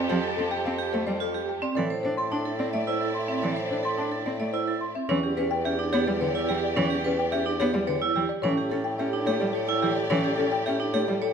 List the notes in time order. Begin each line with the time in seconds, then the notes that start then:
Already playing: F2 C4 G4 A4 D5
0.09 F3 G4 C5
0.23 A4
0.36 C4 A4
0.51 G4 G5
0.65 C4 F5
0.79 G4
0.93 A3 C5
1.07 G3 C5 D5
1.20 F4 A4
1.34 G4
1.49 G5
1.62 C4 D5
1.75 A2 E3 E4 A4 D5
1.90 C5
2.03 D4 C5
2.17 A4 C6
2.31 D4 A5
2.45 A4
2.59 C4 D5
2.73 A3 D5 E5
2.87 E4 C5
3.01 A4
3.14 C6
3.28 C4 E5
3.42 E3 A4 D5
3.56 C5
3.71 D4 C5
3.83 A4 C6
3.98 D4 A5
4.12 A4
4.26 C4 D5
4.40 A3 D5 E5
4.53 E4 C5
4.68 A4
4.81 C6
4.95 C4 E5
5.09 E2 E3 C#4 G4 C#5 D5
5.24 G4
5.37 C#4 B4
5.51 G5
5.65 C#4 G4 E5
5.79 D4
5.93 B3 G4 C#5
6.06 G3 D5
6.21 D3 B4 C#5
6.35 E4
6.49 E3 G4 G5
6.63 D5
6.76 E3 C#4 C#5
6.90 G4
7.04 C#4 B4
7.19 G5
7.32 C#4 G4 E5
7.46 D4
7.60 B3 G4 C#5
7.73 G3 D5
7.87 D3 B4 C#5
8.02 E4
8.16 E3 G4 G5
8.29 D5
8.42 A2 E3 C#4 G4 C#5 D5
8.57 G4
8.70 C#4 A4
8.84 G5
8.98 C#4 G4 E5
9.13 D4
9.26 A3 G4 C#5
9.40 G3 D5
9.53 A4 C#5
9.68 E4
9.82 E3 G4 G5
9.96 D5
10.10 E3 C#4 C#5
10.24 G4
10.38 C#4 A4
10.52 G5
10.66 C#4 G4 E5
10.80 D4
10.94 A3 G4 C#5
11.08 G3 D5
11.22 A4 C#5